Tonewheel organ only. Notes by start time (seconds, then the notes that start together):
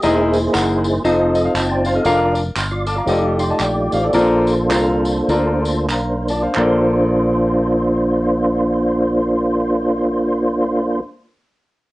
Already playing: G4 D#5
0.04 A#3 D#4 E4 G#4 C5
1.04 C4 D#4 F4 A4 D#5
1.55 G5
1.70 C5 A5
1.95 A4 F5
2.04 F4 A#4 D5
2.71 F4 D5
2.87 A4 F5
2.95 F4 D5
3.06 A3 D#4 F4 G4 C5
3.13 D5
4.13 A#3 C4 F4 A4 C5
4.19 D4
5.91 C5
6.30 F4 D5
6.42 C5
6.56 A#3 D4 F4 C5